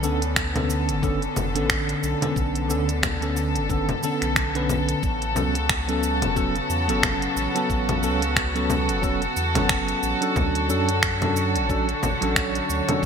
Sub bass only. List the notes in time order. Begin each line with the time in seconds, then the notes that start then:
0.03 D2
0.89 F#1
1.36 F#1
1.55 A1
2.03 B1
2.36 B1
2.69 D2
3.55 F#1
4.22 B1
5.03 A1
5.36 C#2
6.22 E1
6.69 E2
6.88 F#1
7.36 A1
7.70 A1
8.03 C#2
8.89 E1
9.36 E2
9.55 F#1
10.03 A1
10.36 D2
10.69 F#2
11.55 A1
12.03 A1
12.22 A1
12.69 D2